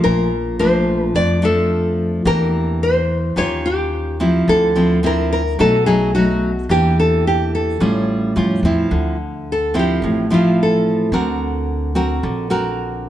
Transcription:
0.00 1.11 A#1 medium
0.00 0.27 F3 medium
0.00 0.27 A3 medium
0.00 0.27 D4 medium
0.00 0.55 A#4 medium
0.04 1.12 A#2 medium
0.59 1.38 F3 medium
0.59 1.38 A3 medium
0.59 1.39 D4 medium
0.59 1.04 C5 medium
1.04 1.15 A#4 medium
1.15 2.22 F2 medium
1.15 2.23 F2 medium
1.15 1.44 D5 medium
1.42 2.21 F3 medium
1.42 2.22 A3 medium
1.42 2.22 D4 medium
1.42 2.29 A4 medium
2.25 3.33 E2 loud
2.25 3.34 E3 medium
2.25 3.00 A#3 medium
2.25 3.00 D4 medium
2.25 3.01 G4 medium
2.25 2.83 A#4 medium
2.83 3.38 C5 medium
3.36 4.44 D#2 medium
3.36 4.45 D#3 medium
3.36 4.15 C#4 medium
3.36 4.16 F4 medium
3.36 4.16 G4 medium
3.36 3.66 C#5 medium
3.66 4.28 G4 medium
4.20 4.74 F3 medium
4.20 4.75 C4 medium
4.20 4.75 E4 medium
4.28 4.51 F4 medium
4.48 5.55 D2 loud
4.48 5.56 D3 medium
4.48 5.06 A4 medium
4.76 4.99 F3 medium
4.76 4.99 C4 medium
4.76 4.99 E4 medium
5.03 5.40 F3 medium
5.03 5.41 C4 medium
5.03 5.41 E4 medium
5.03 5.31 A#4 medium
5.33 5.58 A#4 medium
5.59 6.66 B1 medium
5.59 6.67 B2 medium
5.59 5.75 F#3 medium
5.59 5.75 A3 medium
5.59 5.75 D#4 medium
5.59 5.86 A4 medium
5.86 6.10 F#3 medium
5.86 6.10 A3 medium
5.86 6.10 D#4 medium
5.86 6.12 G#4 medium
6.15 6.50 F#3 medium
6.15 6.51 A3 medium
6.15 6.50 D#4 medium
6.15 6.66 F#4 medium
6.69 7.76 E2 loud
6.69 7.78 E3 medium
6.69 7.76 A#3 medium
6.69 7.76 D4 medium
6.69 6.99 G4 medium
6.69 7.77 G4 medium
7.00 7.27 A4 medium
7.27 7.54 G4 medium
7.55 8.33 A4 medium
7.80 8.32 A1 medium
7.80 8.89 A2 medium
7.80 8.31 G3 medium
7.80 8.32 C#4 medium
7.80 8.32 F4 medium
8.36 8.61 F2 medium
8.36 8.59 G3 soft
8.36 8.59 C#4 medium
8.36 8.60 F4 medium
8.63 8.88 E2 medium
8.63 9.15 F3 medium
8.63 9.15 C4 medium
8.63 9.16 E4 medium
8.91 9.98 D2 medium
8.91 9.99 D3 medium
9.52 9.76 A4 medium
9.74 10.25 F3 medium
9.74 10.25 C4 medium
9.74 10.26 E4 medium
9.79 10.28 G4 medium
10.02 11.09 A1 medium
10.02 11.11 A2 medium
10.30 11.09 F3 medium
10.30 11.09 C4 medium
10.30 11.09 E4 medium
10.30 10.59 F4 medium
10.63 11.12 A4 medium
11.12 12.19 D2 medium
11.12 12.21 D3 medium
11.12 11.92 C4 medium
11.12 11.92 F#4 medium
11.12 11.92 A#4 medium
11.95 12.46 C4 medium
11.95 12.47 F#4 medium
11.95 12.47 A#4 medium
12.23 13.09 A#1 medium
12.23 13.09 D3 medium
12.50 13.09 C4 medium
12.50 13.09 F#4 medium
12.50 13.09 A#4 medium

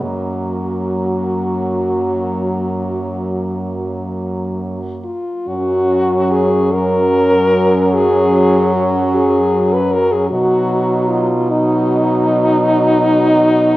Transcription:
0.02 5.14 F#2 medium
0.02 5.13 F#3 medium
0.02 5.13 A#3 soft
0.02 4.09 F#4 medium
5.04 5.49 F4 medium
5.48 10.28 F#2 medium
5.48 6.69 F#3 medium
5.48 6.69 C#4 medium
5.48 6.33 F#4 loud
6.31 6.75 G#4 medium
6.74 10.28 F#3 medium
6.74 10.28 C#4 medium
6.74 7.96 A#4 loud
7.94 8.74 G#4 medium
8.75 9.17 F#4 medium
9.15 9.75 G#4 loud
9.73 9.94 B4 medium
9.93 10.13 A#4 loud
10.12 10.29 G#4 medium
10.29 13.77 B2 medium
10.29 11.33 F#3 medium
10.29 11.49 D#4 medium
10.29 11.11 F#4 medium
11.10 11.52 F4 medium
11.50 13.77 F#3 medium
11.50 13.77 D#4 loud
11.50 13.77 D#4 medium

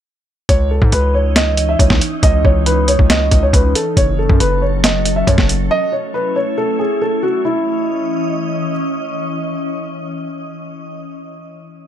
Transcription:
0.49 0.80 C#2 loud
0.49 3.93 E3 medium
0.49 7.41 C#4 medium
0.49 3.93 D#4 medium
0.49 0.70 C#5 loud
0.49 kick loud
0.49 closed hi-hat medium
0.71 0.91 A4 medium
0.82 0.92 G#2 loud
0.82 kick loud
0.92 1.76 C#2 loud
0.92 1.13 B4 medium
0.92 closed hi-hat medium
1.14 1.35 C#5 medium
1.36 1.67 D#5 medium
1.36 snare loud
1.36 closed hi-hat medium
1.57 closed hi-hat medium
1.69 1.79 E5 medium
1.79 2.00 C#2 loud
1.79 2.00 C#5 medium
1.79 kick loud
1.79 closed hi-hat medium
1.90 kick loud
1.90 snare loud
2.01 closed hi-hat medium
2.23 2.44 C#2 loud
2.23 2.44 D#5 medium
2.23 kick loud
2.23 closed hi-hat medium
2.45 2.97 C#2 loud
2.45 2.65 C#5 medium
2.45 kick loud
2.66 2.87 B4 medium
2.66 closed hi-hat medium
2.88 3.09 C#5 medium
2.88 closed hi-hat medium
2.99 3.30 C#2 loud
2.99 kick medium
3.10 3.41 D#5 medium
3.10 snare loud
3.10 closed hi-hat medium
3.31 3.52 C#2 loud
3.31 kick loud
3.31 closed hi-hat medium
3.43 3.53 C#5 medium
3.53 3.74 C#2 loud
3.53 3.74 B4 medium
3.53 kick loud
3.53 closed hi-hat medium
3.75 3.96 A4 medium
3.75 closed hi-hat medium
3.97 4.28 F#1 loud
3.97 5.69 F#3 medium
3.97 5.69 A4 medium
3.97 4.18 C#5 loud
3.97 kick loud
3.97 closed hi-hat medium
4.19 4.39 A4 medium
4.29 4.40 F#2 loud
4.29 kick loud
4.40 5.24 F#1 loud
4.40 4.61 B4 medium
4.40 closed hi-hat medium
4.62 4.83 C#5 medium
4.84 5.14 D#5 medium
4.84 snare loud
4.84 closed hi-hat medium
5.05 closed hi-hat medium
5.16 5.27 E5 medium
5.27 5.38 F#2 loud
5.27 5.48 C#5 medium
5.27 kick loud
5.27 closed hi-hat medium
5.38 5.69 F#1 loud
5.38 kick medium
5.38 snare loud
5.49 closed hi-hat medium
5.71 7.43 A3 medium
5.71 7.43 E4 medium
5.71 5.91 D#5 loud
5.92 6.13 C#5 medium
6.14 6.35 B4 medium
6.36 6.57 C#5 medium
6.58 6.78 A4 loud
6.79 7.00 G#4 medium
7.02 7.22 A4 medium
7.23 7.44 F#4 medium
7.45 10.99 E3 medium
7.45 10.99 C#4 medium
7.45 8.71 E4 medium
7.45 10.99 D#5 medium

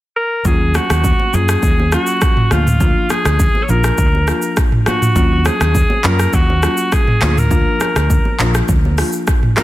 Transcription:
0.17 0.48 A#4 loud
0.45 0.77 D#2 loud
0.45 0.99 F#3 medium
0.45 0.99 A#3 medium
0.45 1.00 C#4 medium
0.45 1.00 F4 loud
0.45 0.77 G#4 loud
0.45 kick loud
0.45 low conga medium
0.45 shaker medium
0.74 1.36 F#4 loud
0.74 cross-stick medium
0.74 high conga medium
0.74 shaker medium
0.90 1.11 D#2 loud
0.90 cross-stick loud
0.90 high conga medium
0.90 shaker medium
1.04 kick loud
1.04 low conga medium
1.04 shaker medium
1.19 high conga medium
1.33 1.54 F#2 loud
1.33 1.52 F#3 medium
1.33 1.52 A#3 medium
1.33 1.52 C#4 medium
1.33 1.52 F4 medium
1.33 1.93 G#4 loud
1.33 low conga medium
1.33 shaker medium
1.49 cross-stick loud
1.49 shaker medium
1.63 1.95 D#2 loud
1.63 kick loud
1.63 shaker medium
1.80 high conga medium
1.92 2.10 F#3 medium
1.92 2.11 A#3 medium
1.92 2.11 C#4 medium
1.92 2.11 F4 medium
1.92 2.54 F#4 loud
1.92 cross-stick medium
1.92 shaker medium
2.07 shaker medium
2.21 kick loud
2.21 cross-stick medium
2.21 shaker medium
2.37 mid tom medium
2.51 2.93 D2 medium
2.51 2.69 F3 medium
2.51 2.69 A#3 medium
2.51 2.69 D4 medium
2.51 2.70 F4 medium
2.51 3.12 F4 medium
2.51 cross-stick medium
2.51 high conga medium
2.51 shaker medium
2.67 mid tom medium
2.67 shaker medium
2.80 3.35 F3 medium
2.80 3.35 A#3 medium
2.80 3.35 D4 medium
2.80 3.35 F4 loud
2.80 kick loud
2.80 low conga medium
2.80 shaker medium
3.10 3.65 G#4 loud
3.10 cross-stick medium
3.10 high conga medium
3.10 shaker medium
3.25 3.46 D2 loud
3.25 cross-stick loud
3.25 high conga medium
3.25 shaker medium
3.40 kick loud
3.40 low conga medium
3.40 shaker medium
3.55 high conga medium
3.63 3.72 C#5 medium
3.69 3.90 A#1 loud
3.69 3.87 F3 medium
3.69 3.87 A#3 medium
3.69 3.87 D4 medium
3.69 3.87 F4 medium
3.69 4.60 A#4 medium
3.69 low conga medium
3.69 shaker medium
3.84 cross-stick medium
3.84 shaker medium
3.98 4.30 D2 loud
3.98 kick loud
3.98 shaker medium
4.15 high conga medium
4.27 4.46 F3 medium
4.27 4.46 A#3 medium
4.27 4.46 D4 medium
4.27 4.46 F4 medium
4.27 cross-stick medium
4.27 shaker medium
4.42 shaker medium
4.57 kick loud
4.57 cross-stick loud
4.57 shaker medium
4.72 mid tom medium
4.86 5.04 F3 medium
4.86 5.05 A#3 medium
4.86 5.05 D4 medium
4.86 5.05 F4 medium
4.86 5.48 F#4 medium
4.86 cross-stick loud
4.86 high conga medium
4.86 shaker medium
5.02 mid tom loud
5.02 shaker medium
5.16 5.48 D#2 loud
5.16 5.70 F#3 loud
5.16 5.70 A#3 medium
5.16 5.70 C#4 medium
5.16 5.70 F4 loud
5.16 kick loud
5.16 low conga medium
5.16 shaker medium
5.45 6.07 G#4 loud
5.45 cross-stick medium
5.45 high conga medium
5.45 shaker medium
5.61 5.81 D#2 loud
5.61 cross-stick loud
5.61 high conga medium
5.61 shaker medium
5.75 kick medium
5.75 low conga medium
5.75 shaker medium
5.90 high conga medium
6.04 6.25 F#2 loud
6.04 6.22 F#3 medium
6.04 6.22 A#3 medium
6.04 6.22 C#4 medium
6.04 6.22 F4 medium
6.04 6.36 A#4 loud
6.04 clap medium
6.04 low conga medium
6.04 shaker medium
6.19 cross-stick medium
6.19 shaker medium
6.33 6.65 D#2 loud
6.33 6.95 F#4 loud
6.33 kick loud
6.33 shaker medium
6.50 high conga medium
6.63 6.81 F#3 medium
6.63 6.81 A#3 medium
6.63 6.81 C#4 medium
6.63 6.81 F4 medium
6.63 cross-stick medium
6.63 shaker medium
6.77 shaker medium
6.92 7.40 G#4 loud
6.92 kick loud
6.92 cross-stick loud
6.92 shaker medium
7.08 mid tom loud
7.21 7.63 D2 loud
7.21 7.40 F3 medium
7.21 7.40 A#3 medium
7.21 7.40 D4 medium
7.21 7.40 F4 medium
7.21 cross-stick loud
7.21 clap medium
7.21 high conga medium
7.21 shaker medium
7.37 8.55 A#4 loud
7.37 mid tom loud
7.37 shaker medium
7.51 8.05 F3 medium
7.51 8.05 A#3 medium
7.51 8.05 D4 medium
7.51 8.06 F4 loud
7.51 kick loud
7.51 low conga medium
7.51 shaker medium
7.80 cross-stick medium
7.80 high conga medium
7.80 shaker medium
7.96 8.17 D2 loud
7.96 cross-stick loud
7.96 high conga medium
7.96 shaker medium
8.10 kick loud
8.10 low conga medium
8.10 shaker medium
8.25 high conga medium
8.39 8.60 A#1 medium
8.39 8.57 F3 medium
8.39 8.58 A#3 medium
8.39 8.58 D4 medium
8.39 8.58 F4 medium
8.39 clap loud
8.39 low conga medium
8.39 shaker medium
8.55 cross-stick medium
8.55 shaker medium
8.69 9.00 D2 loud
8.69 kick loud
8.69 low conga medium
8.69 shaker medium
8.85 high conga medium
8.98 9.16 F3 medium
8.98 9.16 A#3 medium
8.98 9.16 D4 medium
8.98 9.17 F4 medium
8.98 cross-stick medium
8.98 open hi-hat medium
8.98 shaker medium
9.12 shaker medium
9.27 kick loud
9.27 cross-stick medium
9.27 shaker medium
9.43 mid tom loud
9.57 9.63 F3 medium
9.57 9.63 A#3 medium
9.57 9.63 D4 medium
9.57 9.63 F4 medium
9.57 9.63 A#4 loud
9.57 cross-stick loud
9.57 clap medium
9.57 high conga medium
9.57 shaker medium

